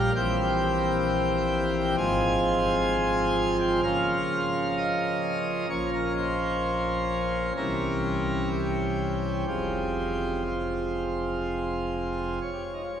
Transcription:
Already playing: A#1 A#2 G3 A#3 G4 F5
0.16 A#1 A#2 E3 C4 G4 G5
1.97 G#1 G#2 F3 C4 F4 G#5
3.61 G5
3.83 C#3 F3 A#3 F4 F5
4.78 D#5
5.69 A#1 A#2 F3 A#3 C#4 C#5
5.94 A#4
6.17 C5
7.57 C2 C3 E3 G3 C#4 A#4
8.51 G4
9.48 F1 F2 F3 G#3 C4 G4
10.46 F4
12.42 C#5
12.54 G4
12.63 F4
12.74 D#4
12.83 F4

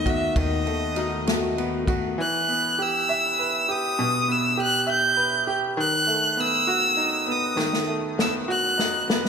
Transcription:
Already playing: D#2 D#3 A3 B3 D#4 D#5
0.06 A3 B3 F#4 E5, kick, ride
0.36 D#2 D#3 A3 B3 F#4 D#5, kick, ride
0.66 A3 B3 F#4, ride
0.95 D#3 A3 B3 D#4 F#4, ride
1.26 D#3 A3 B3 F#4, snare, ride
1.56 D#3 A3 B3 F#4, ride
1.86 A3 B3 F#4, kick, ride
2.18 E3 F#6
2.48 B3
2.79 G4 E6
3.09 E5
3.39 B4
3.69 G4 D#6
3.99 B2
4.28 B3 E6
4.58 G4
4.62 F#6
4.87 E5
4.91 G6
5.17 B4
5.47 G4
5.77 D#3 F#6
6.07 A3
6.37 B3 E6
6.67 F#4
6.97 D#4
7.26 B3
7.31 D#6
7.57 D#3, snare
7.73 snare
7.87 A3
8.18 B3 E6, snare
8.48 F#4 F#6
8.78 D#4, snare
9.08 B3, snare
9.25 snare

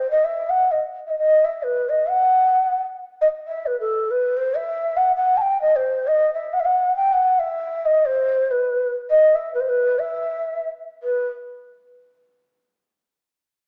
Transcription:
0.10 D#5
0.24 E5
0.49 F#5
0.71 D#5
1.06 D#5 E5
1.18 D#5
1.44 E5
1.62 B4
1.89 D#5
2.09 F#5
3.21 D#5
3.47 E5
3.66 B4
3.79 A4
4.10 B4
4.36 C5
4.56 E5
4.96 F#5
5.16 F#5
5.37 A5
5.41 G5
5.61 D#5
5.76 C5
6.07 D#5
6.34 E5
6.53 F#5
6.60 E5
6.65 F#5
6.96 G5
7.12 F#5
7.39 E5
7.85 D#5
8.05 C5
8.50 B4
9.10 D#5
9.35 E5
9.54 B4
9.60 C5
9.69 B4
9.98 E5
11.03 B4

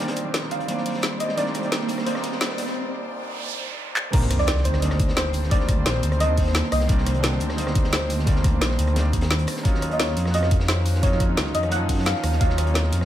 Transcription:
Already playing: D2 D#3 G3 A#3 D#4 C5 D5 G5, riser
0.00 G3 A#3 C4 D4
0.08 snare, closed hi-hat
0.16 closed hi-hat
0.22 D#3 G3 A#3
0.27 C4 D4
0.34 A#1, snare, closed hi-hat
0.43 snare
0.51 D2 F5, closed hi-hat
0.60 closed hi-hat
0.65 C2 D#3 G3 A#3, closed hi-hat
0.70 C4 D4
0.77 snare
0.86 closed hi-hat, open hi-hat
0.94 snare
1.02 snare, closed hi-hat
1.20 D#5, closed hi-hat
1.29 snare
1.36 C2 D#3 G3 A#3 C4 D4 D5, closed hi-hat
1.46 snare
1.54 cross-stick, closed hi-hat
1.60 D#3 G3 A#3, closed hi-hat
1.65 C4 D4
1.72 snare, closed hi-hat
1.80 snare
1.88 D2, closed hi-hat, open hi-hat
1.98 cross-stick, snare
2.03 G3 A#3 D#4 C5, closed hi-hat
2.08 C4 D4
2.15 cross-stick, snare
2.24 closed hi-hat
2.32 snare
2.41 snare, closed hi-hat
2.50 snare
2.58 closed hi-hat, open hi-hat
2.66 snare
2.75 noise sweep
3.96 clap
4.12 C2 D#3 G3 A#3 C4 D4 A#4 C5, kick, closed hi-hat, crash, sub drop
4.22 snare
4.31 cross-stick, closed hi-hat
4.36 D#3 G3 A#3 D5, closed hi-hat
4.41 C4 D4
4.47 snare, closed hi-hat
4.57 snare
4.64 D2 C5, closed hi-hat
4.73 cross-stick, snare
4.79 G3 A#3 D#4, closed hi-hat
4.84 C4 D4
4.90 cross-stick, snare
5.00 kick, closed hi-hat
5.08 snare
5.17 C5, snare, closed hi-hat
5.25 snare
5.33 closed hi-hat, open hi-hat
5.43 snare
5.50 D#3 G3 A#3 C4 D4 D5, kick, closed hi-hat
5.60 snare
5.68 kick, cross-stick, closed hi-hat
5.74 D#3 G3 A#3
5.79 C4 D4
5.86 A#1 C5, snare, closed hi-hat
5.94 snare
6.03 D2, closed hi-hat
6.12 cross-stick, closed hi-hat
6.17 D#3 G3 A#3 D#5, closed hi-hat
6.22 D3 C4
6.29 D#2
6.37 kick, closed hi-hat, open hi-hat
6.46 snare
6.55 snare, closed hi-hat
6.63 snare
6.72 C2 D#5, cross-stick, closed hi-hat, open hi-hat
6.80 snare
6.88 C2 D#3 G3 A#3 C4 D4, kick, closed hi-hat
6.98 snare
7.06 cross-stick, closed hi-hat
7.12 D#3 G3 A#3, closed hi-hat
7.17 D3 C4
7.23 snare, closed hi-hat
7.32 snare
7.40 D2, closed hi-hat
7.49 cross-stick, snare
7.55 G3 A#3 D#4, closed hi-hat
7.60 C4
7.67 cross-stick, snare
7.75 kick, closed hi-hat
7.84 snare
7.93 snare, closed hi-hat
8.02 snare
8.10 closed hi-hat, open hi-hat
8.19 snare
8.25 D#3 G3 A#3 C4 D4, kick, closed hi-hat
8.36 snare
8.44 kick, cross-stick, closed hi-hat
8.50 D#3 G3 A#3
8.55 C4 D4
8.61 A#1, snare, closed hi-hat
8.71 snare
8.79 D2, closed hi-hat
8.87 cross-stick, closed hi-hat
8.93 D#3 G3 A#3, snare, closed hi-hat
8.98 C4 D4
9.13 D#2, kick, closed hi-hat
9.21 snare, closed hi-hat
9.31 snare, closed hi-hat
9.39 closed hi-hat
9.47 cross-stick, closed hi-hat, open hi-hat
9.56 snare
9.63 D#2 D#3 F#3 A#3 C#4 D#4 F4, kick, closed hi-hat
9.74 snare
9.82 cross-stick, closed hi-hat
9.88 F#3 A#3 C#4, closed hi-hat
9.93 D#4 F4 D#5
10.00 C#5, snare, closed hi-hat
10.07 snare
10.17 F2, closed hi-hat
10.25 cross-stick, snare
10.31 A#3 C#4 F#4 D#5, closed hi-hat
10.35 D#4 F4
10.43 cross-stick, snare
10.51 kick, closed hi-hat
10.60 snare
10.68 C5, snare, closed hi-hat
10.78 snare
10.86 closed hi-hat, open hi-hat
10.95 snare
11.02 F#3 A#3 C#4 D#4 F4 C#5, kick, closed hi-hat
11.12 snare
11.20 kick, cross-stick, closed hi-hat
11.26 F#3 A#3 C#4
11.30 D#4 F4
11.37 C#2, snare, closed hi-hat
11.46 snare
11.55 F2 D#5, closed hi-hat
11.63 cross-stick, closed hi-hat
11.69 F#3 A#3 C#4 F#5, closed hi-hat
11.73 F3 D#4
11.80 F#2
11.89 kick, closed hi-hat, open hi-hat
11.98 snare
12.06 F5, snare, closed hi-hat
12.15 snare
12.23 D#2, cross-stick, closed hi-hat, open hi-hat
12.32 snare
12.39 D#2 F#3 A#3 C#4 D#4 F4 F5, kick, closed hi-hat
12.49 snare
12.58 cross-stick, closed hi-hat
12.64 F#3 A#3 C#4, closed hi-hat
12.68 D#4 F4
12.74 snare, closed hi-hat
12.83 snare
12.93 F2, closed hi-hat
13.01 cross-stick, snare

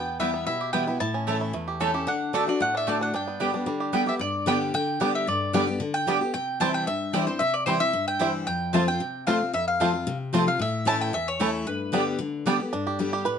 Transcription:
Already playing: E2 B3 G5
0.19 E3 G3 B3 E4 B4 E5 G5
0.34 B3
0.46 B2 E4 E5
0.61 G4
0.73 E3 G3 B3 E4 B4 G5
0.87 B3 E4
1.00 A2 E4 A5
1.14 C#4
1.27 E3 A3 C#4 E4 C#5 A5
1.41 E4
1.53 E2 A3
1.68 G4
1.80 E3 A3 C#4 E4 A4 C#5 A5
1.94 C#4 E4 G4
2.07 D3 D4 F#5
2.33 D3 A3 D4 F#4 D5 E5 A5
2.47 D4 F#4 D5
2.60 A2 A3 F#5
2.75 D4 E5
2.87 D3 A3 D4 F#4 D5 A5
3.01 D4 F#5
3.14 G2 D4 G5
3.28 B3
3.40 D3 G3 B3 G4 D5 G5
3.54 B3 D4 G4
3.66 D3 G3
3.80 G4
3.92 D3 G3 B3 G4 D5 G5
4.06 B3 G4 E5
4.19 G2 D5
4.46 D3 G3 B3 D4 G4 D5 G5
4.74 D3 G5
5.00 D3 G3 B3 D4 G4 D5 G5
5.15 E5
5.27 G2 D5
5.53 D3 G3 B3 D4 G4 D5 G5
5.67 B3 G4
5.80 D3
5.94 G5
6.07 D3 G3 B3 D4 G4 D5 G5
6.21 B3 G4
6.34 C3 G5
6.60 E3 G3 C4 E4 C5 G5 A5
6.74 G5
6.87 G2 E5
7.13 E3 G3 C4 E4 C5 D5 G5
7.27 C4 E4 C5
7.39 C3 E5
7.54 D5
7.66 E3 G3 C4 E4 C5 G5
7.80 C4 E4 E5
7.93 G2
8.08 G5
8.19 E3 G3 C4 E4 C5 G5
8.47 F2 G5
8.73 F3 A3 C4 F4 C5 A5
8.88 C4 F4 G5
9.00 C3
9.27 F3 A3 C4 F4 C5 F5 A5
9.41 C4 F4
9.53 F2 E5
9.68 F5
9.80 F3 A3 C4 F4 C5 A5
9.94 C4 F4
10.07 C3
10.33 F3 A3 C4 F4 C5 A5
10.47 C4 F4 F5
10.59 A2 E5
10.85 E3 A3 C#4 E4 C#5 A5
11.01 G5
11.13 E2 E5
11.28 C#5
11.39 E3 A3 C#4 E4 C#5 A5
11.67 G2 B4
11.92 D3 G3 B3 D4 G4 D5 G5
12.19 D3
12.46 D3 G3 B3 D4 G4 D5 G5
12.60 B3 G4
12.73 G2 D4
12.87 G4
12.99 D3 G3 B3 G4
13.13 G4
13.25 A2 B4

